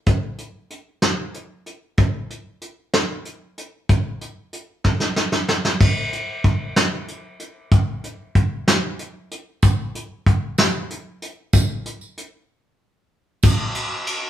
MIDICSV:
0, 0, Header, 1, 2, 480
1, 0, Start_track
1, 0, Tempo, 636267
1, 51, Time_signature, 6, 3, 24, 8
1, 10787, End_track
2, 0, Start_track
2, 0, Title_t, "Drums"
2, 47, Note_on_c, 9, 42, 63
2, 52, Note_on_c, 9, 36, 82
2, 122, Note_off_c, 9, 42, 0
2, 127, Note_off_c, 9, 36, 0
2, 289, Note_on_c, 9, 42, 50
2, 365, Note_off_c, 9, 42, 0
2, 530, Note_on_c, 9, 42, 46
2, 606, Note_off_c, 9, 42, 0
2, 770, Note_on_c, 9, 38, 88
2, 770, Note_on_c, 9, 42, 64
2, 845, Note_off_c, 9, 38, 0
2, 845, Note_off_c, 9, 42, 0
2, 1013, Note_on_c, 9, 42, 51
2, 1088, Note_off_c, 9, 42, 0
2, 1253, Note_on_c, 9, 42, 46
2, 1328, Note_off_c, 9, 42, 0
2, 1489, Note_on_c, 9, 42, 60
2, 1495, Note_on_c, 9, 36, 86
2, 1564, Note_off_c, 9, 42, 0
2, 1570, Note_off_c, 9, 36, 0
2, 1737, Note_on_c, 9, 42, 49
2, 1813, Note_off_c, 9, 42, 0
2, 1973, Note_on_c, 9, 42, 51
2, 2048, Note_off_c, 9, 42, 0
2, 2214, Note_on_c, 9, 38, 92
2, 2214, Note_on_c, 9, 42, 68
2, 2290, Note_off_c, 9, 38, 0
2, 2290, Note_off_c, 9, 42, 0
2, 2453, Note_on_c, 9, 42, 52
2, 2528, Note_off_c, 9, 42, 0
2, 2698, Note_on_c, 9, 42, 53
2, 2774, Note_off_c, 9, 42, 0
2, 2934, Note_on_c, 9, 42, 67
2, 2937, Note_on_c, 9, 36, 87
2, 3010, Note_off_c, 9, 42, 0
2, 3013, Note_off_c, 9, 36, 0
2, 3177, Note_on_c, 9, 42, 54
2, 3252, Note_off_c, 9, 42, 0
2, 3416, Note_on_c, 9, 42, 51
2, 3491, Note_off_c, 9, 42, 0
2, 3653, Note_on_c, 9, 38, 45
2, 3657, Note_on_c, 9, 36, 65
2, 3729, Note_off_c, 9, 38, 0
2, 3733, Note_off_c, 9, 36, 0
2, 3773, Note_on_c, 9, 38, 43
2, 3848, Note_off_c, 9, 38, 0
2, 3895, Note_on_c, 9, 38, 62
2, 3971, Note_off_c, 9, 38, 0
2, 4015, Note_on_c, 9, 38, 53
2, 4090, Note_off_c, 9, 38, 0
2, 4138, Note_on_c, 9, 38, 71
2, 4213, Note_off_c, 9, 38, 0
2, 4260, Note_on_c, 9, 38, 66
2, 4336, Note_off_c, 9, 38, 0
2, 4380, Note_on_c, 9, 36, 91
2, 4380, Note_on_c, 9, 49, 83
2, 4455, Note_off_c, 9, 36, 0
2, 4456, Note_off_c, 9, 49, 0
2, 4622, Note_on_c, 9, 42, 53
2, 4697, Note_off_c, 9, 42, 0
2, 4860, Note_on_c, 9, 42, 52
2, 4861, Note_on_c, 9, 36, 71
2, 4935, Note_off_c, 9, 42, 0
2, 4936, Note_off_c, 9, 36, 0
2, 5102, Note_on_c, 9, 38, 95
2, 5102, Note_on_c, 9, 42, 69
2, 5178, Note_off_c, 9, 38, 0
2, 5178, Note_off_c, 9, 42, 0
2, 5342, Note_on_c, 9, 42, 54
2, 5418, Note_off_c, 9, 42, 0
2, 5579, Note_on_c, 9, 42, 55
2, 5655, Note_off_c, 9, 42, 0
2, 5820, Note_on_c, 9, 42, 72
2, 5821, Note_on_c, 9, 36, 96
2, 5896, Note_off_c, 9, 42, 0
2, 5897, Note_off_c, 9, 36, 0
2, 6063, Note_on_c, 9, 42, 57
2, 6138, Note_off_c, 9, 42, 0
2, 6300, Note_on_c, 9, 42, 59
2, 6302, Note_on_c, 9, 36, 70
2, 6376, Note_off_c, 9, 42, 0
2, 6377, Note_off_c, 9, 36, 0
2, 6545, Note_on_c, 9, 38, 96
2, 6545, Note_on_c, 9, 42, 80
2, 6621, Note_off_c, 9, 38, 0
2, 6621, Note_off_c, 9, 42, 0
2, 6782, Note_on_c, 9, 42, 62
2, 6858, Note_off_c, 9, 42, 0
2, 7026, Note_on_c, 9, 42, 61
2, 7102, Note_off_c, 9, 42, 0
2, 7260, Note_on_c, 9, 54, 81
2, 7264, Note_on_c, 9, 36, 98
2, 7266, Note_on_c, 9, 42, 81
2, 7336, Note_off_c, 9, 54, 0
2, 7340, Note_off_c, 9, 36, 0
2, 7342, Note_off_c, 9, 42, 0
2, 7506, Note_on_c, 9, 42, 60
2, 7581, Note_off_c, 9, 42, 0
2, 7744, Note_on_c, 9, 36, 71
2, 7746, Note_on_c, 9, 42, 60
2, 7819, Note_off_c, 9, 36, 0
2, 7821, Note_off_c, 9, 42, 0
2, 7981, Note_on_c, 9, 54, 79
2, 7985, Note_on_c, 9, 38, 104
2, 7985, Note_on_c, 9, 42, 81
2, 8056, Note_off_c, 9, 54, 0
2, 8060, Note_off_c, 9, 38, 0
2, 8060, Note_off_c, 9, 42, 0
2, 8226, Note_on_c, 9, 42, 61
2, 8301, Note_off_c, 9, 42, 0
2, 8464, Note_on_c, 9, 42, 58
2, 8540, Note_off_c, 9, 42, 0
2, 8699, Note_on_c, 9, 54, 91
2, 8702, Note_on_c, 9, 36, 100
2, 8703, Note_on_c, 9, 42, 74
2, 8774, Note_off_c, 9, 54, 0
2, 8777, Note_off_c, 9, 36, 0
2, 8779, Note_off_c, 9, 42, 0
2, 8944, Note_on_c, 9, 42, 58
2, 9019, Note_off_c, 9, 42, 0
2, 9062, Note_on_c, 9, 54, 28
2, 9138, Note_off_c, 9, 54, 0
2, 9184, Note_on_c, 9, 42, 58
2, 9260, Note_off_c, 9, 42, 0
2, 10129, Note_on_c, 9, 54, 87
2, 10134, Note_on_c, 9, 51, 86
2, 10136, Note_on_c, 9, 36, 114
2, 10205, Note_off_c, 9, 54, 0
2, 10209, Note_off_c, 9, 51, 0
2, 10211, Note_off_c, 9, 36, 0
2, 10371, Note_on_c, 9, 51, 67
2, 10378, Note_on_c, 9, 54, 29
2, 10447, Note_off_c, 9, 51, 0
2, 10453, Note_off_c, 9, 54, 0
2, 10612, Note_on_c, 9, 51, 68
2, 10618, Note_on_c, 9, 54, 27
2, 10688, Note_off_c, 9, 51, 0
2, 10694, Note_off_c, 9, 54, 0
2, 10787, End_track
0, 0, End_of_file